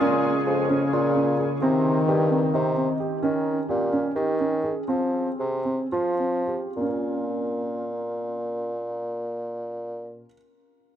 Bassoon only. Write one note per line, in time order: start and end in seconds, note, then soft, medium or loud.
0.01 0.39 A#2 medium
0.46 0.85 F2 medium
0.93 1.50 A#2 medium
1.62 2.00 C3 medium
2.08 2.46 G2 medium
2.54 2.89 C3 medium
3.23 3.62 D#3 medium
3.70 4.08 A#2 medium
4.16 4.76 D#3 medium
4.88 5.31 F3 medium
5.40 5.83 C3 medium
5.93 6.63 F3 medium
6.77 10.24 A#2 medium